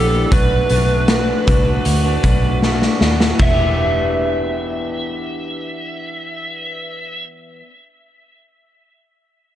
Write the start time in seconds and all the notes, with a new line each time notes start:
Already playing: A#1 E3 B3 D4 G4 A4
0.31 B1 B2 A3 D4 F#4 B4, kick, closed hi-hat
0.69 B1 B2 A3 D4 F#4, closed hi-hat
1.08 B2 A3 D4 F#4, snare, closed hi-hat
1.46 C2 B2 A3 D4 F#4, kick, closed hi-hat
1.65 A3 D4 F#4
1.85 D2, closed hi-hat
2.04 A3 D4 F#4
2.22 B1 B2 A3 D4 F#4, kick, closed hi-hat
2.62 B2 A3 D4 F#4, snare
2.82 snare
3.00 D#2 B2 A3 D4 F#4, snare
3.20 snare
3.34 E3
3.39 E1 B3 E5, kick, crash
3.48 D4
3.54 G4